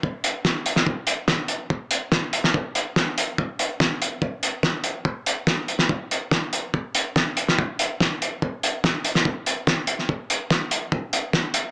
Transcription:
\new DrumStaff \with { instrumentName = "Drums" } \drummode { \time 4/4 \tempo 4 = 143 bd8 hh8 <bd sn>8 hh16 sn16 bd8 hh8 <bd sn>8 hh8 | bd8 hh8 <bd sn>8 hh16 sn16 bd8 hh8 <bd sn>8 hh8 | bd8 hh8 <bd sn>8 hh8 bd8 hh8 <bd sn>8 hh8 | bd8 hh8 <bd sn>8 hh16 sn16 bd8 hh8 <bd sn>8 hh8 |
bd8 hh8 <bd sn>8 hh16 sn16 bd8 hh8 <bd sn>8 hh8 | bd8 hh8 <bd sn>8 hh16 sn16 bd8 hh8 <bd sn>8 hh16 sn16 | bd8 hh8 <bd sn>8 hh8 bd8 hh8 <bd sn>8 hh8 | }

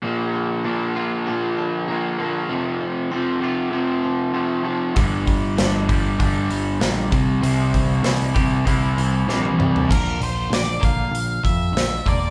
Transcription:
<<
  \new Staff \with { instrumentName = "Lead electric guitar" } { \time 4/4 \key bes \lydian \tempo 4 = 97 r1 | r1 | r1 | r1 |
bes'8 c''8 d''8 f''4 e''4 d''8 | }
  \new Staff \with { instrumentName = "Overdriven electric guitar" } { \clef bass \time 4/4 \key bes \lydian <bes, f bes>4 <bes, f bes>8 <bes, f bes>8 <bes, f bes>4 <bes, f bes>8 <bes, f bes>8 | <f, c f>4 <f, c f>8 <f, c f>8 <f, c f>4 <f, c f>8 <f, c f>8 | <g, d g>4 <g, d g>8 <g, d g>8 <g, d g>4 <g, d g>8 <c g c'>8 | <c g c'>4 <c g c'>8 <c g c'>8 <c g c'>4 <c g c'>8 <c g c'>8 |
r1 | }
  \new Staff \with { instrumentName = "Clean electric guitar" } { \clef bass \time 4/4 \key bes \lydian bes,8 d8 d'8 f'8 d'8 d8 bes8 d8 | f,8 f8 c'8 f'8 c'8 f8 a8 f8 | g,8 g8 d'8 g'8 d'8 g8 bes8 c8 | c8 e8 e'8 g'8 e'8 e8 g8 e8 |
<bes, d bes>8 <bes, d>8 <bes, d>8 <bes, d bes>8 <bes, d>8 <bes, d>8 <bes, d>8 <bes, d bes>8 | }
  \new Staff \with { instrumentName = "Picked electric bass" } { \clef bass \time 4/4 \key bes \lydian r1 | r1 | g,,4 g,,4 g,,8 g,,8 bes,,8 c,8 | c,4 c,4 c,8 c,8 bes,,8 c,8 |
bes,,8 bes,,8 bes,,8 bes,,8 bes,,8 f,8 bes,,8 e,,8 | }
  \new DrumStaff \with { instrumentName = "Drums" } \drummode { \time 4/4 r4 r4 r4 r4 | r4 r4 r4 r4 | <hho bd>8 <hho bd>8 <hho sn>8 <hho bd>8 <hho bd>8 hho8 <hho sn>8 <hho bd>8 | hho8 <hho bd>8 <hho sn>8 <hho bd>8 <hho bd>8 hho8 sn16 tommh16 toml16 tomfh16 |
<cymc bd>8 hho8 <hho sn>8 <hho bd>8 hho8 <hho bd>8 <hho sn>8 <hho bd>8 | }
>>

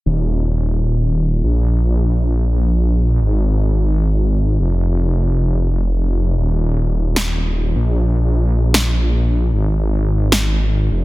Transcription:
<<
  \new Staff \with { instrumentName = "Detuned saw bass" } { \clef bass \time 4/4 \key bes \mixolydian \tempo 4 = 152 ees,,2.~ ees,,8 bes,,8~ | bes,,1 | aes,,2.~ aes,,8 f,,8~ | f,,1 |
ees,,2.~ ees,,8 bes,,8~ | bes,,1 | aes,,2.~ aes,,8 f,,8 | }
  \new DrumStaff \with { instrumentName = "Drums" } \drummode { \time 4/4 r4 r4 r4 r4 | r4 r4 r4 r4 | r4 r4 r4 r4 | r4 r4 r4 r4 |
r4 r4 sn4 r4 | r4 r4 sn4 r4 | r4 r4 sn4 r4 | }
>>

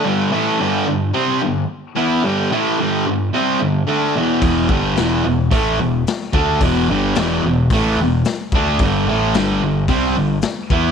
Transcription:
<<
  \new Staff \with { instrumentName = "Distorted electric guitar" } { \clef bass \time 4/4 \key g \major \tempo 4 = 110 <g, d g>8 <a, e a>8 <g, d g>8 <g, d>8 <c g c'>8 <g, d>8 r8 <e b e'>8 | <g, d g>8 <a, e a>8 <g, d g>8 <g, d>8 <c g c'>8 <g, d>8 <d a d'>8 <e, b, e>8 | <e, b, e>8 <g, d g>8 <e, b, e>8 <e, b,>8 <a, e a>8 <e, b,>8 r8 <d a d'>8 | <e, b, e>8 <g, d g>8 <e, b, e>8 <e, b,>8 <a, e a>8 <e, b,>8 r8 <d a d'>8 |
<g, d g>8 <a, e a>8 <g, d g>8 <g, d>8 <c g c'>8 <g, d>8 r8 <e b e'>8 | }
  \new Staff \with { instrumentName = "Picked electric bass" } { \clef bass \time 4/4 \key g \major r1 | r1 | e,,8 g,,8 e,,8 e,,8 a,,8 e,,8 r8 d,8 | e,,8 g,,8 e,,8 e,,8 a,,8 e,,8 r8 d,8 |
g,,8 a,,8 g,,8 g,,8 c,8 g,,8 r8 e,8 | }
  \new DrumStaff \with { instrumentName = "Drums" } \drummode { \time 4/4 r4 r4 r4 r4 | r4 r4 r4 r4 | <hho bd>8 bd8 <hho sn>4 <hho bd>4 <hho sn>16 sn16 bd8 | <hho bd>4 <hho sn>4 <hho bd>4 <hho sn>8 bd8 |
<hho bd>4 <hho sn>4 <hho bd>4 <hho sn>8 bd8 | }
>>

